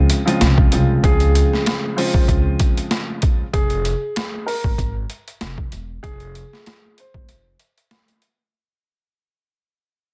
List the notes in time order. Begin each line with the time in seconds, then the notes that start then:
Already playing: C#3 F3 G#3 C4 F4
0.10 closed hi-hat
0.26 C#3 F3 G#3 C4 F4, closed hi-hat
0.41 C2, snare, closed hi-hat
0.58 kick
0.71 C2 C#3 F3 G#3 C4 F4, closed hi-hat
1.03 C#2 C#3 F3 G#3 C4 F4 G#4, kick, closed hi-hat
1.20 closed hi-hat
1.35 closed hi-hat
1.53 snare
1.66 snare, closed hi-hat
1.96 C#3 F3 G#3 C4 F4 C5, open hi-hat
2.14 D#2, kick
2.28 C#2, kick, closed hi-hat
2.59 kick, closed hi-hat
2.77 closed hi-hat
2.91 snare, closed hi-hat
3.22 kick, closed hi-hat
3.53 F1 G#4, kick, closed hi-hat
3.70 closed hi-hat
3.85 closed hi-hat
4.16 snare, closed hi-hat
4.46 A#4, open hi-hat
4.64 G#1, kick
4.78 G#1, kick, closed hi-hat
5.10 closed hi-hat
5.28 closed hi-hat
5.41 F1, snare, closed hi-hat
5.58 kick
5.72 E1, closed hi-hat
6.03 F1 G#4, kick, closed hi-hat
6.20 closed hi-hat
6.35 closed hi-hat
6.53 snare
6.66 snare, closed hi-hat
6.98 C5, closed hi-hat
7.14 G#1, kick
7.29 F1, closed hi-hat
7.59 closed hi-hat
7.78 closed hi-hat
7.91 snare, closed hi-hat
8.08 closed hi-hat
8.22 closed hi-hat